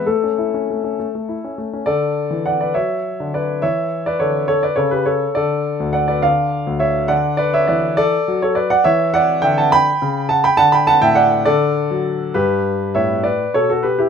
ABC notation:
X:1
M:6/8
L:1/16
Q:3/8=69
K:A
V:1 name="Grand piano"
A8- A2 z2 | [K:D] [Ad]4 [df] [Bd] [ce]4 [Bd]2 | [ce]3 [Bd] [Ac]2 [Ac] [Bd] [Ac] [GB] [Ac]2 | [Ad]4 [df] [Bd] [d=f]4 [ce]2 |
[df]2 [Bd] [ce] [Bd]2 [Ad]3 [Ac] [Bd] [df] | [ce]2 [df]2 [eg] [fa] [gb]4 [fa] [gb] | [fa] [gb] [fa] [eg] [df]2 [Ad]6 | [GB]4 [ce]2 [Bd]2 [Ac] [FA] [GB] [EG] |]
V:2 name="Grand piano" clef=bass
A, C E C A, C A, A, E C A, C | [K:D] D,3 E,3 F,3 D,3 | E,4 D,4 C,4 | D,3 D,,3 D,3 D,,3 |
D,4 E,4 F,4 | E,4 D,4 C,4 | D,3 A,,3 D,3 F,3 | G,,4 A,,4 B,,4 |]